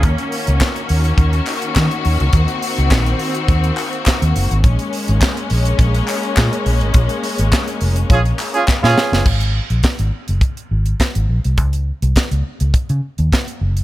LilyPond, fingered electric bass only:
\new Staff \with { instrumentName = "Fingered electric bass" } { \clef bass \time 4/4 \key bes \minor \tempo 4 = 104 ees,16 r8 des,16 r8 ees,8 ees,8 r8 ees16 r16 ees,16 des,16 | ees,16 r8 des,16 bes,,8 r8 ees,8 r8. ees,16 ges,,16 aes,,16 | bes,,16 r8 aes,,16 r8 bes,,8 bes,,8 r8 bes,16 r16 bes,,16 aes,,16 | bes,,16 r8 aes,,16 r8 f,,8 bes,,8 r8. bes,16 r16 ges,,16 |
aes,,8. bes,,16 r16 aes,,16 r16 ges,,16 r8 aes,,8 r16 aes,,16 bes,,16 c,16 | des,8. c,16 r16 des,16 r16 des,16 r16 des16 r16 ees,16 r8 ges,,8 | }